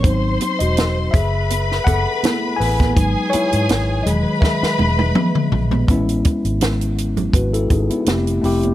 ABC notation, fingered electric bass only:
X:1
M:4/4
L:1/16
Q:"Swing 16ths" 1/4=82
K:Alyd
V:1 name="Fingered electric bass" clef=bass
G,,,2 z E,,,3 F,,,4 F,,, z3 A,,,2 | G,,, z2 G,, G,,,2 E,,, z3 E,,,2 z2 ^A,,,2 | A,,,2 z G,,,4- G,,, G,,,2 G,,, z =F,,,2 F,,,2 |]